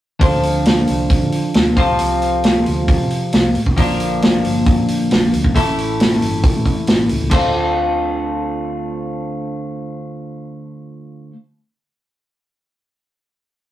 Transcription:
0.20 D2 D3 F3 C4 D4 A4, kick, open hi-hat
0.43 open hi-hat
0.65 snare, open hi-hat
0.87 C2, open hi-hat
1.10 kick, open hi-hat
1.21 D3
1.32 open hi-hat
1.54 D2, snare, open hi-hat
1.76 C2 C3 F3 C4 F4 A4, kick, open hi-hat
1.90 C2
1.99 C2, open hi-hat
2.22 open hi-hat
2.44 snare, open hi-hat
2.66 D2, open hi-hat
2.88 kick, open hi-hat
3.00 C3
3.10 open hi-hat
3.33 C2, snare, open hi-hat
3.55 A2, open hi-hat
3.66 C2, kick
3.77 A#1 A#2 D3 F3 A#3 D4 A#4, kick, open hi-hat
4.00 open hi-hat
4.22 snare, open hi-hat
4.45 G1, open hi-hat
4.66 kick, open hi-hat
4.80 A#2
4.88 open hi-hat
5.11 A#1, snare, open hi-hat
5.34 D2, open hi-hat
5.44 A#1, kick
5.55 A1 A2 E3 A3 C#4 E4 A4, kick, open hi-hat
5.78 open hi-hat
6.00 snare, open hi-hat
6.22 G1, open hi-hat
6.44 kick, open hi-hat
6.56 A2
6.66 kick, open hi-hat
6.87 A1, snare, open hi-hat
7.09 C#2, open hi-hat
7.21 C#2
7.30 D2 D3 A3 C4 F4, kick, crash
7.34 A4

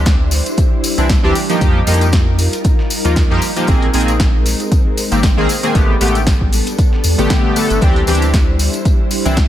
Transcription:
Already playing: D2 G3 D4 E4 C5
0.06 kick, snare, closed hi-hat, tambourine
0.31 snare, open hi-hat, tambourine
0.46 closed hi-hat, tambourine
0.57 kick, closed hi-hat, tambourine
0.84 open hi-hat, tambourine
0.98 C2 E3 C4 D4 E4, closed hi-hat, tambourine
1.09 kick, snare, closed hi-hat, tambourine
1.23 D2 E3 C4 D4 G4, snare
1.35 D#4 F4 A#4, open hi-hat, tambourine
1.49 F3 A#3 D#4 G4, closed hi-hat, tambourine
1.61 F2 F3 G4, kick, closed hi-hat, tambourine
1.87 F2 F3 A#3 D#4 G4, open hi-hat, tambourine
1.94 closed hi-hat
2.01 closed hi-hat, tambourine
2.12 kick, snare, closed hi-hat, tambourine
2.38 open hi-hat, tambourine
2.53 closed hi-hat, tambourine
2.64 kick, closed hi-hat, tambourine
2.79 snare
2.90 open hi-hat, tambourine
3.04 D#2 F3 A#3 D#4 F4, snare, closed hi-hat, tambourine
3.16 kick, snare, closed hi-hat, tambourine
3.30 F2 F3 A#3 D#4 G4
3.42 open hi-hat, tambourine
3.56 F3 A#3 D#4 G4, closed hi-hat, tambourine
3.67 A#1 D#3 G#3 A#3 C4 G#4, kick, closed hi-hat, tambourine
3.82 closed hi-hat
3.94 A#1 D#3 A#3 C4 G#4, open hi-hat, tambourine
4.01 closed hi-hat
4.08 closed hi-hat, tambourine
4.20 kick, snare, closed hi-hat, tambourine
4.46 snare, open hi-hat, tambourine
4.60 closed hi-hat, tambourine
4.72 kick, closed hi-hat, tambourine
4.97 open hi-hat, tambourine
5.11 G#1 D#3 A#3 C4 G4, closed hi-hat, tambourine
5.23 kick, snare, closed hi-hat, tambourine
5.37 A#1 D#3 A#3 C4 G#4, snare
5.49 open hi-hat, tambourine
5.63 D#3 A#3 C4 G#4, closed hi-hat, tambourine
5.75 A1 G3 A3 B3 D4 G4 A4, kick, closed hi-hat, tambourine
6.01 A1 D3 A3 B3 G4, open hi-hat, tambourine
6.08 closed hi-hat
6.15 closed hi-hat, tambourine
6.27 kick, snare, closed hi-hat, tambourine
6.41 kick
6.53 open hi-hat, tambourine
6.67 closed hi-hat, tambourine
6.78 kick, closed hi-hat, tambourine
6.93 snare
7.04 E2, open hi-hat, tambourine
7.18 A1 D3 A3 B3 G4, snare, closed hi-hat, tambourine
7.30 kick, snare, closed hi-hat, tambourine
7.56 D3 A3 B3 A4, open hi-hat, tambourine
7.70 G1, closed hi-hat, tambourine
7.81 D2 E3 C4 D4 E4 G4 C5, kick, closed hi-hat, tambourine
7.96 closed hi-hat
8.07 D2 E3 C4 D4 G4, open hi-hat, tambourine
8.15 closed hi-hat
8.22 closed hi-hat, tambourine
8.34 kick, snare, closed hi-hat, tambourine
8.59 snare, open hi-hat, tambourine
8.73 closed hi-hat, tambourine
8.85 kick, closed hi-hat, tambourine
9.11 open hi-hat, tambourine
9.25 C2 E3 C4 D4 E4, closed hi-hat, tambourine
9.37 kick, snare, closed hi-hat, tambourine

